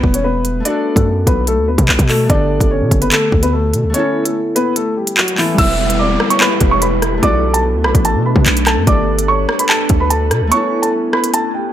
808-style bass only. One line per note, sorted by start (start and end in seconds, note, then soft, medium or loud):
0.04 0.63 E1 loud
0.96 1.26 F#2 loud
1.27 1.59 B1 loud
1.58 1.77 D2 loud
1.78 1.88 B2 loud
1.89 1.98 B1 loud
1.99 2.28 B2 loud
2.30 2.59 G1 loud
2.60 2.83 G1 loud
2.81 2.91 B2 loud
2.91 3.11 F#1 loud
3.32 3.75 D2 loud
3.73 3.85 B2 loud
3.84 3.94 D2 loud
5.58 6.18 E1 loud
6.61 7.20 E1 loud
7.23 7.76 B1 loud
7.74 7.86 D2 loud
7.84 7.94 B1 loud
7.95 8.17 A1 loud
8.15 8.35 B2 loud
8.36 8.46 B2 loud
8.46 8.78 B1 loud
8.77 8.87 F#2 loud
8.87 9.46 G1 loud
9.90 10.33 D2 loud
10.31 10.43 B2 loud
10.41 10.51 D2 loud